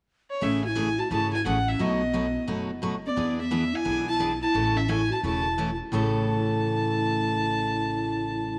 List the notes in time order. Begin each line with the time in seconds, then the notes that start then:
0.30 C#5
0.41 A1 C#3 E3 A3 C#4 G#4 E5
0.64 E4 F#4 G#5
0.75 C#3 E3 A3 C#4 G#4
0.99 F#4 A5
1.11 G#1 C#3 E3 A3 C#4 E4 G#4 A5
1.33 E4 G#5
1.45 A1 C#3 E3 A3 C#4 G#4 F#5
1.68 C#4 E5
1.79 B1 B2 F#3 A3 B3 D#4 F#4 D#5
2.13 B2 F#3 A3 D#4 F#4
2.47 F#1 B2 F#3 A3 D#4 F#4
2.82 B2 F#3 A3 D#4 F#4
3.06 B3 C#4 D5
3.16 E2 E3 B3 D4 G#4
3.40 B3 E5
3.51 E3 B3 D4 G#4
3.73 E4 G#5
3.85 B1 E3 B3 D4 G#4
4.07 E4 A5
4.19 E3 B3 D4 G#4
4.42 E4 A5
4.54 A1 C#3 E3 A3 C#4 A4
4.76 C#4 E5
4.88 C#3 E3 A3 C#4 E4 A4 G#5
5.10 F#4 A5
5.23 E1 C#3 E3 A3 C#4 E4 A4 A5
5.58 C#3 E3 A3 C#4 A4
5.92 A1 A2 C#3 E3 A3 C#4 E4 A4 A5